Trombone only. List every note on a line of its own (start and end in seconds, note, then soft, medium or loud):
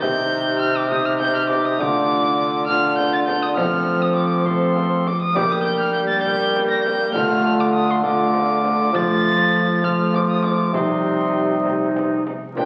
0.03 0.90 D#4 medium
0.91 1.84 D#4 medium
1.82 2.69 D4 medium
2.70 3.60 D4 medium
3.58 4.46 C4 medium
4.47 5.07 C4 medium
5.36 6.21 A#3 medium
6.26 7.13 A#3 medium
7.13 8.01 A3 medium
8.04 8.92 A3 medium
8.94 9.82 A3 medium
9.84 10.72 A3 medium
10.73 12.22 G3 medium
12.55 12.65 A#3 medium